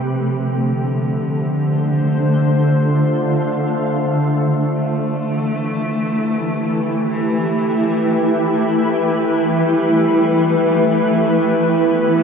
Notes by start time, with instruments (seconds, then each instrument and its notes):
Already playing: ambient pad A3 G4
0.04 cello F3
0.08 ambient pad D3
1.07 ambient pad C5
2.17 ambient pad F4
4.76 ambient pad E3, cello A3
5.19 ambient pad E4
5.56 ambient pad G4
6.51 ambient pad B4
7.09 cello E3
9.47 cello G3
11.21 cello A3
11.80 cello B3